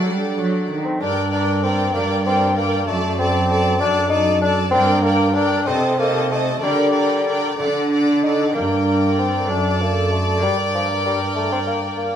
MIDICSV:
0, 0, Header, 1, 7, 480
1, 0, Start_track
1, 0, Key_signature, -2, "minor"
1, 0, Tempo, 622407
1, 787, Time_signature, 6, 3, 24, 8
1, 4133, Tempo, 640342
1, 6533, Tempo, 621118
1, 9313, End_track
2, 0, Start_track
2, 0, Title_t, "Violin section"
2, 0, Program_c, 0, 48
2, 0, Note_on_c, 0, 78, 48
2, 634, Note_off_c, 0, 78, 0
2, 795, Note_on_c, 0, 79, 37
2, 1019, Note_off_c, 0, 79, 0
2, 1028, Note_on_c, 0, 79, 41
2, 1252, Note_off_c, 0, 79, 0
2, 1261, Note_on_c, 0, 79, 46
2, 1495, Note_off_c, 0, 79, 0
2, 1504, Note_on_c, 0, 79, 49
2, 1741, Note_off_c, 0, 79, 0
2, 1750, Note_on_c, 0, 79, 47
2, 1973, Note_off_c, 0, 79, 0
2, 1982, Note_on_c, 0, 79, 51
2, 2218, Note_off_c, 0, 79, 0
2, 2220, Note_on_c, 0, 81, 45
2, 2456, Note_off_c, 0, 81, 0
2, 2469, Note_on_c, 0, 81, 46
2, 2695, Note_off_c, 0, 81, 0
2, 2704, Note_on_c, 0, 81, 49
2, 2933, Note_off_c, 0, 81, 0
2, 2942, Note_on_c, 0, 81, 52
2, 3170, Note_off_c, 0, 81, 0
2, 3180, Note_on_c, 0, 81, 45
2, 3410, Note_off_c, 0, 81, 0
2, 3419, Note_on_c, 0, 81, 53
2, 3649, Note_off_c, 0, 81, 0
2, 3658, Note_on_c, 0, 79, 50
2, 3889, Note_off_c, 0, 79, 0
2, 3898, Note_on_c, 0, 79, 51
2, 4131, Note_off_c, 0, 79, 0
2, 4142, Note_on_c, 0, 79, 51
2, 4369, Note_off_c, 0, 79, 0
2, 4379, Note_on_c, 0, 81, 47
2, 4602, Note_off_c, 0, 81, 0
2, 4611, Note_on_c, 0, 81, 47
2, 4843, Note_off_c, 0, 81, 0
2, 4851, Note_on_c, 0, 81, 50
2, 5084, Note_off_c, 0, 81, 0
2, 5093, Note_on_c, 0, 79, 47
2, 5326, Note_off_c, 0, 79, 0
2, 5340, Note_on_c, 0, 79, 44
2, 5570, Note_off_c, 0, 79, 0
2, 5580, Note_on_c, 0, 79, 50
2, 5811, Note_off_c, 0, 79, 0
2, 5819, Note_on_c, 0, 78, 48
2, 6051, Note_off_c, 0, 78, 0
2, 6060, Note_on_c, 0, 78, 45
2, 6293, Note_off_c, 0, 78, 0
2, 6308, Note_on_c, 0, 78, 45
2, 6535, Note_off_c, 0, 78, 0
2, 6535, Note_on_c, 0, 79, 42
2, 7229, Note_off_c, 0, 79, 0
2, 7270, Note_on_c, 0, 81, 45
2, 7968, Note_off_c, 0, 81, 0
2, 7994, Note_on_c, 0, 79, 44
2, 9313, Note_off_c, 0, 79, 0
2, 9313, End_track
3, 0, Start_track
3, 0, Title_t, "Violin section"
3, 0, Program_c, 1, 48
3, 0, Note_on_c, 1, 74, 56
3, 623, Note_off_c, 1, 74, 0
3, 784, Note_on_c, 1, 74, 50
3, 1009, Note_off_c, 1, 74, 0
3, 1019, Note_on_c, 1, 74, 46
3, 1255, Note_off_c, 1, 74, 0
3, 1264, Note_on_c, 1, 74, 43
3, 1481, Note_off_c, 1, 74, 0
3, 1490, Note_on_c, 1, 74, 51
3, 1726, Note_off_c, 1, 74, 0
3, 1735, Note_on_c, 1, 74, 40
3, 1969, Note_off_c, 1, 74, 0
3, 1979, Note_on_c, 1, 74, 44
3, 2213, Note_off_c, 1, 74, 0
3, 2222, Note_on_c, 1, 74, 46
3, 2455, Note_off_c, 1, 74, 0
3, 2465, Note_on_c, 1, 74, 51
3, 2686, Note_off_c, 1, 74, 0
3, 2695, Note_on_c, 1, 74, 49
3, 2916, Note_off_c, 1, 74, 0
3, 2925, Note_on_c, 1, 74, 52
3, 3164, Note_off_c, 1, 74, 0
3, 3175, Note_on_c, 1, 74, 51
3, 3403, Note_off_c, 1, 74, 0
3, 3412, Note_on_c, 1, 74, 45
3, 3633, Note_off_c, 1, 74, 0
3, 3643, Note_on_c, 1, 74, 58
3, 3877, Note_off_c, 1, 74, 0
3, 3886, Note_on_c, 1, 74, 46
3, 4117, Note_off_c, 1, 74, 0
3, 4126, Note_on_c, 1, 74, 49
3, 4361, Note_off_c, 1, 74, 0
3, 4364, Note_on_c, 1, 75, 49
3, 4589, Note_off_c, 1, 75, 0
3, 4598, Note_on_c, 1, 75, 53
3, 4832, Note_off_c, 1, 75, 0
3, 4841, Note_on_c, 1, 75, 45
3, 5077, Note_on_c, 1, 74, 54
3, 5079, Note_off_c, 1, 75, 0
3, 5312, Note_off_c, 1, 74, 0
3, 5321, Note_on_c, 1, 74, 46
3, 5553, Note_off_c, 1, 74, 0
3, 5562, Note_on_c, 1, 74, 50
3, 5799, Note_off_c, 1, 74, 0
3, 5808, Note_on_c, 1, 74, 48
3, 6042, Note_off_c, 1, 74, 0
3, 6051, Note_on_c, 1, 74, 46
3, 6288, Note_off_c, 1, 74, 0
3, 6302, Note_on_c, 1, 74, 42
3, 6532, Note_off_c, 1, 74, 0
3, 6541, Note_on_c, 1, 74, 52
3, 9313, Note_off_c, 1, 74, 0
3, 9313, End_track
4, 0, Start_track
4, 0, Title_t, "Viola section"
4, 0, Program_c, 2, 48
4, 0, Note_on_c, 2, 69, 53
4, 633, Note_off_c, 2, 69, 0
4, 782, Note_on_c, 2, 70, 47
4, 1013, Note_off_c, 2, 70, 0
4, 1022, Note_on_c, 2, 70, 41
4, 1258, Note_off_c, 2, 70, 0
4, 1268, Note_on_c, 2, 70, 42
4, 1495, Note_off_c, 2, 70, 0
4, 1504, Note_on_c, 2, 70, 45
4, 1742, Note_off_c, 2, 70, 0
4, 1750, Note_on_c, 2, 70, 42
4, 1979, Note_off_c, 2, 70, 0
4, 1988, Note_on_c, 2, 70, 48
4, 2222, Note_off_c, 2, 70, 0
4, 2227, Note_on_c, 2, 69, 50
4, 2445, Note_off_c, 2, 69, 0
4, 2454, Note_on_c, 2, 69, 51
4, 2692, Note_off_c, 2, 69, 0
4, 2702, Note_on_c, 2, 69, 50
4, 2925, Note_off_c, 2, 69, 0
4, 2934, Note_on_c, 2, 69, 49
4, 3167, Note_off_c, 2, 69, 0
4, 3176, Note_on_c, 2, 69, 48
4, 3408, Note_off_c, 2, 69, 0
4, 3419, Note_on_c, 2, 69, 50
4, 3644, Note_on_c, 2, 70, 60
4, 3649, Note_off_c, 2, 69, 0
4, 3876, Note_off_c, 2, 70, 0
4, 3885, Note_on_c, 2, 70, 48
4, 4122, Note_off_c, 2, 70, 0
4, 4131, Note_on_c, 2, 70, 50
4, 4359, Note_on_c, 2, 69, 46
4, 4363, Note_off_c, 2, 70, 0
4, 4586, Note_off_c, 2, 69, 0
4, 4595, Note_on_c, 2, 69, 47
4, 4830, Note_off_c, 2, 69, 0
4, 4839, Note_on_c, 2, 69, 45
4, 5078, Note_off_c, 2, 69, 0
4, 5084, Note_on_c, 2, 70, 57
4, 5313, Note_off_c, 2, 70, 0
4, 5322, Note_on_c, 2, 70, 44
4, 5557, Note_off_c, 2, 70, 0
4, 5566, Note_on_c, 2, 70, 45
4, 5804, Note_off_c, 2, 70, 0
4, 5804, Note_on_c, 2, 69, 43
4, 6041, Note_off_c, 2, 69, 0
4, 6050, Note_on_c, 2, 69, 40
4, 6275, Note_off_c, 2, 69, 0
4, 6284, Note_on_c, 2, 69, 53
4, 6523, Note_off_c, 2, 69, 0
4, 6527, Note_on_c, 2, 70, 46
4, 7225, Note_off_c, 2, 70, 0
4, 7256, Note_on_c, 2, 69, 39
4, 7971, Note_on_c, 2, 70, 46
4, 7975, Note_off_c, 2, 69, 0
4, 9313, Note_off_c, 2, 70, 0
4, 9313, End_track
5, 0, Start_track
5, 0, Title_t, "Bassoon"
5, 0, Program_c, 3, 70
5, 652, Note_on_c, 3, 60, 54
5, 773, Note_on_c, 3, 62, 61
5, 785, Note_off_c, 3, 60, 0
5, 1015, Note_off_c, 3, 62, 0
5, 1019, Note_on_c, 3, 62, 67
5, 1260, Note_on_c, 3, 60, 63
5, 1272, Note_off_c, 3, 62, 0
5, 1494, Note_on_c, 3, 58, 70
5, 1506, Note_off_c, 3, 60, 0
5, 1739, Note_off_c, 3, 58, 0
5, 1744, Note_on_c, 3, 60, 70
5, 1976, Note_off_c, 3, 60, 0
5, 1980, Note_on_c, 3, 58, 67
5, 2219, Note_on_c, 3, 57, 80
5, 2230, Note_off_c, 3, 58, 0
5, 2452, Note_off_c, 3, 57, 0
5, 2457, Note_on_c, 3, 60, 72
5, 2931, Note_on_c, 3, 62, 71
5, 2943, Note_off_c, 3, 60, 0
5, 3154, Note_off_c, 3, 62, 0
5, 3158, Note_on_c, 3, 63, 83
5, 3399, Note_off_c, 3, 63, 0
5, 3406, Note_on_c, 3, 62, 68
5, 3525, Note_off_c, 3, 62, 0
5, 3633, Note_on_c, 3, 60, 94
5, 3870, Note_on_c, 3, 58, 70
5, 3882, Note_off_c, 3, 60, 0
5, 4116, Note_on_c, 3, 62, 77
5, 4127, Note_off_c, 3, 58, 0
5, 4362, Note_on_c, 3, 60, 73
5, 4373, Note_off_c, 3, 62, 0
5, 4603, Note_off_c, 3, 60, 0
5, 4606, Note_on_c, 3, 58, 78
5, 4840, Note_off_c, 3, 58, 0
5, 4849, Note_on_c, 3, 57, 57
5, 5087, Note_on_c, 3, 55, 70
5, 5098, Note_off_c, 3, 57, 0
5, 5811, Note_off_c, 3, 55, 0
5, 6285, Note_on_c, 3, 63, 60
5, 6511, Note_off_c, 3, 63, 0
5, 6523, Note_on_c, 3, 58, 68
5, 7015, Note_on_c, 3, 60, 61
5, 7027, Note_off_c, 3, 58, 0
5, 7255, Note_on_c, 3, 62, 61
5, 7267, Note_off_c, 3, 60, 0
5, 7499, Note_on_c, 3, 58, 59
5, 7510, Note_off_c, 3, 62, 0
5, 7739, Note_on_c, 3, 57, 54
5, 7750, Note_off_c, 3, 58, 0
5, 7969, Note_off_c, 3, 57, 0
5, 7974, Note_on_c, 3, 55, 61
5, 8082, Note_off_c, 3, 55, 0
5, 8218, Note_on_c, 3, 53, 52
5, 8325, Note_off_c, 3, 53, 0
5, 8459, Note_on_c, 3, 55, 64
5, 8566, Note_off_c, 3, 55, 0
5, 8693, Note_on_c, 3, 57, 65
5, 8811, Note_off_c, 3, 57, 0
5, 8821, Note_on_c, 3, 60, 58
5, 8873, Note_off_c, 3, 60, 0
5, 8936, Note_on_c, 3, 58, 60
5, 9043, Note_off_c, 3, 58, 0
5, 9166, Note_on_c, 3, 58, 64
5, 9313, Note_off_c, 3, 58, 0
5, 9313, End_track
6, 0, Start_track
6, 0, Title_t, "Lute"
6, 0, Program_c, 4, 24
6, 45, Note_on_c, 4, 55, 37
6, 48, Note_on_c, 4, 62, 34
6, 269, Note_off_c, 4, 55, 0
6, 292, Note_on_c, 4, 54, 35
6, 515, Note_off_c, 4, 54, 0
6, 525, Note_on_c, 4, 51, 34
6, 753, Note_off_c, 4, 51, 0
6, 754, Note_off_c, 4, 62, 0
6, 776, Note_on_c, 4, 43, 40
6, 1401, Note_off_c, 4, 43, 0
6, 1504, Note_on_c, 4, 43, 40
6, 1504, Note_on_c, 4, 58, 35
6, 1506, Note_on_c, 4, 62, 36
6, 2122, Note_off_c, 4, 43, 0
6, 2192, Note_off_c, 4, 58, 0
6, 2192, Note_off_c, 4, 62, 0
6, 2225, Note_on_c, 4, 42, 40
6, 2836, Note_off_c, 4, 42, 0
6, 2936, Note_on_c, 4, 42, 44
6, 2940, Note_on_c, 4, 57, 32
6, 2944, Note_on_c, 4, 62, 39
6, 3547, Note_off_c, 4, 42, 0
6, 3619, Note_off_c, 4, 57, 0
6, 3619, Note_off_c, 4, 62, 0
6, 3653, Note_on_c, 4, 43, 45
6, 3656, Note_on_c, 4, 58, 36
6, 3659, Note_on_c, 4, 62, 41
6, 4269, Note_off_c, 4, 43, 0
6, 4340, Note_off_c, 4, 58, 0
6, 4343, Note_off_c, 4, 62, 0
6, 4367, Note_on_c, 4, 48, 46
6, 4367, Note_on_c, 4, 57, 37
6, 4372, Note_on_c, 4, 60, 33
6, 4377, Note_on_c, 4, 63, 36
6, 4983, Note_off_c, 4, 48, 0
6, 5054, Note_off_c, 4, 57, 0
6, 5057, Note_off_c, 4, 60, 0
6, 5060, Note_off_c, 4, 63, 0
6, 5087, Note_on_c, 4, 50, 40
6, 5090, Note_on_c, 4, 58, 37
6, 5098, Note_on_c, 4, 62, 31
6, 5709, Note_off_c, 4, 50, 0
6, 5782, Note_off_c, 4, 58, 0
6, 5786, Note_off_c, 4, 62, 0
6, 5808, Note_on_c, 4, 50, 41
6, 5812, Note_on_c, 4, 57, 31
6, 5817, Note_on_c, 4, 62, 34
6, 6430, Note_off_c, 4, 50, 0
6, 6498, Note_off_c, 4, 57, 0
6, 6501, Note_off_c, 4, 62, 0
6, 6501, Note_on_c, 4, 58, 30
6, 6510, Note_on_c, 4, 62, 34
6, 6532, Note_on_c, 4, 43, 37
6, 7216, Note_off_c, 4, 58, 0
6, 7219, Note_on_c, 4, 57, 30
6, 7223, Note_off_c, 4, 62, 0
6, 7227, Note_off_c, 4, 43, 0
6, 7232, Note_on_c, 4, 62, 33
6, 7254, Note_on_c, 4, 42, 36
6, 7932, Note_off_c, 4, 57, 0
6, 7935, Note_on_c, 4, 58, 31
6, 7937, Note_off_c, 4, 62, 0
6, 7943, Note_off_c, 4, 42, 0
6, 7946, Note_on_c, 4, 62, 34
6, 7967, Note_on_c, 4, 43, 39
6, 9313, Note_off_c, 4, 43, 0
6, 9313, Note_off_c, 4, 58, 0
6, 9313, Note_off_c, 4, 62, 0
6, 9313, End_track
7, 0, Start_track
7, 0, Title_t, "Cello section"
7, 0, Program_c, 5, 48
7, 52, Note_on_c, 5, 55, 43
7, 293, Note_on_c, 5, 54, 46
7, 297, Note_off_c, 5, 55, 0
7, 536, Note_off_c, 5, 54, 0
7, 538, Note_on_c, 5, 51, 49
7, 780, Note_off_c, 5, 51, 0
7, 783, Note_on_c, 5, 43, 60
7, 1422, Note_off_c, 5, 43, 0
7, 1501, Note_on_c, 5, 43, 61
7, 2137, Note_off_c, 5, 43, 0
7, 2216, Note_on_c, 5, 42, 66
7, 2850, Note_off_c, 5, 42, 0
7, 2935, Note_on_c, 5, 42, 61
7, 3564, Note_off_c, 5, 42, 0
7, 3643, Note_on_c, 5, 43, 64
7, 4281, Note_off_c, 5, 43, 0
7, 4363, Note_on_c, 5, 48, 66
7, 4998, Note_off_c, 5, 48, 0
7, 5081, Note_on_c, 5, 50, 56
7, 5723, Note_off_c, 5, 50, 0
7, 5805, Note_on_c, 5, 50, 60
7, 6446, Note_off_c, 5, 50, 0
7, 6535, Note_on_c, 5, 43, 50
7, 7229, Note_off_c, 5, 43, 0
7, 7256, Note_on_c, 5, 42, 53
7, 7972, Note_on_c, 5, 43, 45
7, 7975, Note_off_c, 5, 42, 0
7, 9313, Note_off_c, 5, 43, 0
7, 9313, End_track
0, 0, End_of_file